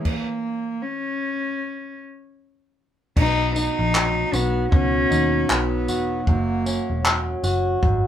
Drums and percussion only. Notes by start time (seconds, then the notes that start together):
0.05 kick, crash
3.17 kick, crash
3.56 tambourine
3.95 clap
4.33 tambourine
4.72 kick
5.12 tambourine
5.50 clap
5.88 tambourine
6.27 kick
6.66 tambourine
7.05 clap
7.44 tambourine
7.83 kick